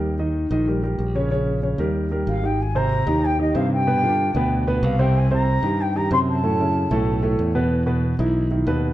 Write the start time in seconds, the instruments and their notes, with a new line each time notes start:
Already playing: fingered electric bass D#2, grand piano G3 G4 A#4
0.19 grand piano D#3 D#4 D#5
0.51 fingered electric bass A#1, grand piano D#3 D#4 D#5
0.67 grand piano G3 G4 A#4
0.83 grand piano G3 G4 A#4
0.99 fingered electric bass A#1
1.15 grand piano C#3 C#4 C#5
1.31 grand piano C#3 C#4 C#5
1.63 grand piano C#3 C#4 C#5
1.78 fingered electric bass D#2, grand piano G3 G4 A#4
2.11 grand piano G3 G4 A#4
2.27 fingered electric bass G#1, bansuri F5
2.43 grand piano D#3 D#4 G4, bansuri G5
2.61 bansuri G#5
2.75 grand piano C3 C4 C5, bansuri A#5
3.06 fingered electric bass D#2, grand piano D#3 D#4 G4
3.25 bansuri G5
3.39 grand piano D#3 D#4 G4, bansuri D#5
3.54 fingered electric bass G2, grand piano C3 C4 C5, bansuri F5
3.73 bansuri G5
3.87 grand piano B2 B3 B4
4.03 grand piano D3 D4 F4
4.35 fingered electric bass D2, grand piano B2 B3 B4
4.67 grand piano B2 B3 B4
4.83 fingered electric bass C2, bansuri F5
4.99 grand piano C3 C4 C5, bansuri G5
5.18 bansuri G#5
5.31 grand piano C3 C4 C5, bansuri A#5
5.63 fingered electric bass G2, grand piano D#3 D#4 G4
5.81 bansuri G5
5.96 grand piano D#3 D#4 G4, bansuri A#5
6.11 fingered electric bass F#2, grand piano C3 C4 C5, bansuri C6
6.29 bansuri A5
6.43 grand piano A2 A3 A4
6.59 grand piano C#3 C#4 E4
6.91 fingered electric bass B1, grand piano A2 A3 A4
7.23 grand piano A2 A3 A4
7.39 fingered electric bass E2
7.55 grand piano B2 B3 B4
7.86 grand piano B2 B3 B4
8.19 fingered electric bass B1, grand piano E3 D#4 E4
8.51 grand piano D#3 D#4 E4
8.67 fingered electric bass D#2, grand piano B2 B3 B4